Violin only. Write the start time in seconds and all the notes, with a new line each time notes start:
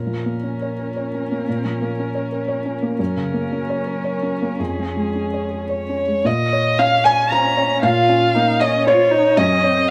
Already playing: A#4
2.99 A#4
4.60 G#4
5.70 C#5
6.26 D#5
6.79 F5
7.05 G#5
7.30 A#5
7.82 F5
8.60 D#5
8.87 C#5
9.37 D#5